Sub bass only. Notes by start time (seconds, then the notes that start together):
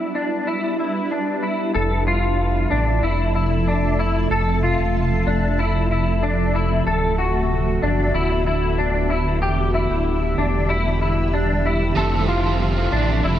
1.75 F1
2.72 A1
3.03 F1
4.31 F1
4.79 E1
5.27 F1
6.86 D1
7.83 F#1
8.14 D1
9.41 E1
9.90 D1
10.37 E1
11.97 F1
12.93 A1
13.25 F1